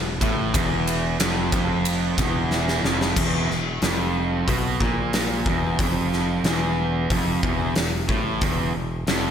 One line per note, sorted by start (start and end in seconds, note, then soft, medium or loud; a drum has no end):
0.00 0.18 E1 medium
0.00 0.15 E2 medium
0.21 0.51 A1 medium
0.21 0.54 A2 loud
0.21 kick loud
0.21 ride medium
0.54 1.16 E1 loud
0.54 1.18 E2 loud
0.54 kick loud
0.54 ride loud
0.87 ride medium
1.19 1.50 F1 medium
1.19 1.51 F2 medium
1.19 snare loud
1.19 ride medium
1.52 2.14 F1 medium
1.52 2.17 F2 medium
1.52 kick loud
1.52 ride medium
1.85 ride loud
2.17 2.79 E1 loud
2.17 2.83 E2 medium
2.17 kick loud
2.17 snare soft
2.17 ride medium
2.51 snare medium
2.68 snare medium
2.83 3.14 F1 medium
2.83 3.15 F2 loud
2.83 snare medium
3.01 snare medium
3.16 3.47 E1 medium
3.16 3.48 E2 medium
3.16 kick loud
3.16 crash medium
3.50 3.80 E1 medium
3.50 3.76 E2 medium
3.50 snare soft
3.82 4.44 F1 medium
3.82 4.47 F2 medium
3.82 snare loud
3.82 open hi-hat soft
4.48 4.78 B1 medium
4.48 4.80 B2 loud
4.48 kick medium
4.48 open hi-hat medium
4.80 5.42 A#1 medium
4.80 5.45 A#2 medium
4.80 kick loud
5.13 snare loud
5.13 open hi-hat medium
5.46 5.77 E1 medium
5.46 5.78 E2 medium
5.46 kick medium
5.79 6.41 F1 medium
5.79 6.44 F2 medium
5.79 kick loud
5.79 open hi-hat soft
6.13 snare soft
6.44 7.06 E1 medium
6.44 7.09 E2 medium
6.44 snare loud
6.44 open hi-hat soft
7.10 7.41 F1 loud
7.10 7.42 F2 medium
7.10 kick loud
7.10 open hi-hat soft
7.43 7.74 E1 medium
7.43 7.75 E2 medium
7.43 kick loud
7.76 8.07 E1 medium
7.76 8.03 E2 medium
7.76 snare loud
7.76 open hi-hat soft
8.08 8.39 A1 medium
8.08 8.41 A2 medium
8.08 kick loud
8.41 8.72 E1 medium
8.41 8.74 E2 medium
8.41 kick loud
8.41 open hi-hat medium
8.75 9.06 E1 medium
8.75 9.01 E2 medium
9.07 9.31 F1 medium
9.07 9.31 F2 loud
9.07 snare loud
9.07 open hi-hat soft